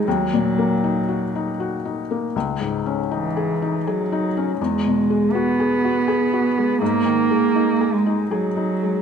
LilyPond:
<<
  \new Staff \with { instrumentName = "Felt piano" } { \time 3/4 \key cis \dorian \tempo 4 = 80 \tuplet 3/2 { dis,8 ais,8 ais8 dis'8 fis'8 dis'8 fis'8 dis'8 ais8 } | \tuplet 3/2 { cis,8 gis,8 cis'8 dis'8 gis'8 dis'8 gis'8 dis'8 cis'8 } | \tuplet 3/2 { e,8 b,8 gis8 fis'8 gis'8 fis'8 gis'8 fis'8 gis8 } | \tuplet 3/2 { gis,8 dis8 gis8 dis'8 gis'8 dis'8 gis'8 dis'8 gis8 } | }
  \new Staff \with { instrumentName = "Cello" } { \clef bass \time 3/4 \key cis \dorian fis2 r4 | r4 e4 fis4 | gis4 b2 | ais4. gis8 fis4 | }
>>